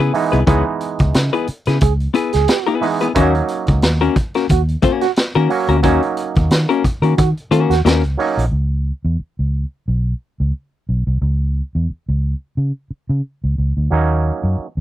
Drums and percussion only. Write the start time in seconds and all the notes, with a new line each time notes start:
0.14 open hi-hat
0.33 closed hi-hat
0.47 kick, closed hi-hat
0.81 closed hi-hat
0.99 kick, closed hi-hat
1.14 snare, closed hi-hat
1.34 closed hi-hat
1.47 closed hi-hat
1.65 snare, closed hi-hat
1.81 kick, closed hi-hat
2.00 closed hi-hat
2.14 closed hi-hat
2.33 snare, closed hi-hat
2.48 snare, closed hi-hat
2.66 closed hi-hat
2.82 open hi-hat
3.00 closed hi-hat
3.15 kick, closed hi-hat
3.35 closed hi-hat
3.48 closed hi-hat
3.67 kick, closed hi-hat
3.82 snare, closed hi-hat
4.02 closed hi-hat
4.16 kick, closed hi-hat
4.34 snare, closed hi-hat
4.49 kick, closed hi-hat
4.68 closed hi-hat
4.82 kick, closed hi-hat
5.01 snare, closed hi-hat
5.16 snare, closed hi-hat
5.34 closed hi-hat
5.50 open hi-hat
5.68 closed hi-hat
5.83 kick, closed hi-hat
6.03 closed hi-hat
6.17 closed hi-hat
6.35 kick, closed hi-hat
6.51 snare, closed hi-hat
6.70 closed hi-hat
6.84 kick, closed hi-hat
7.03 closed hi-hat
7.18 kick, closed hi-hat
7.37 closed hi-hat
7.52 closed hi-hat
7.71 snare, closed hi-hat
7.86 snare, closed hi-hat
8.04 closed hi-hat
8.20 open hi-hat
8.39 closed hi-hat